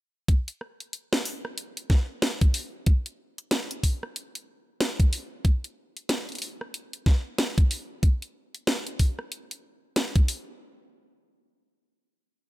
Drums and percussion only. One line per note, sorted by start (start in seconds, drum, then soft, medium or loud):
0.28 kick loud
0.28 closed hi-hat medium
0.48 closed hi-hat medium
0.61 cross-stick soft
0.80 closed hi-hat soft
0.93 closed hi-hat medium
1.13 snare loud
1.13 closed hi-hat medium
1.25 open hi-hat medium
1.45 cross-stick medium
1.58 closed hi-hat medium
1.77 closed hi-hat medium
1.90 kick loud
1.90 cross-stick soft
1.90 snare medium
2.22 snare loud
2.22 closed hi-hat medium
2.41 kick loud
2.41 closed hi-hat medium
2.54 open hi-hat medium
2.86 kick loud
2.86 closed hi-hat medium
3.06 closed hi-hat medium
3.38 closed hi-hat soft
3.51 snare loud
3.51 closed hi-hat medium
3.71 closed hi-hat medium
3.83 kick medium
3.83 open hi-hat medium
4.03 cross-stick medium
4.16 closed hi-hat medium
4.35 closed hi-hat medium
4.80 snare loud
4.80 closed hi-hat medium
5.00 kick loud
5.00 closed hi-hat medium
5.13 open hi-hat medium
5.45 kick loud
5.45 closed hi-hat medium
5.64 closed hi-hat medium
5.97 closed hi-hat soft
6.09 snare loud
6.09 closed hi-hat medium
6.29 closed hi-hat soft
6.32 closed hi-hat soft
6.35 closed hi-hat soft
6.38 closed hi-hat soft
6.38 open hi-hat medium
6.61 cross-stick medium
6.74 closed hi-hat medium
6.93 closed hi-hat medium
7.06 kick loud
7.06 snare medium
7.38 snare loud
7.38 closed hi-hat medium
7.58 kick loud
7.58 closed hi-hat medium
7.71 open hi-hat medium
8.03 kick loud
8.03 closed hi-hat medium
8.22 closed hi-hat medium
8.55 closed hi-hat soft
8.67 snare loud
8.67 closed hi-hat medium
8.87 closed hi-hat medium
8.99 kick medium
8.99 open hi-hat medium
9.19 cross-stick medium
9.32 closed hi-hat medium
9.51 closed hi-hat medium
9.96 snare loud
9.96 closed hi-hat medium
10.16 kick loud
10.16 closed hi-hat medium
10.28 open hi-hat medium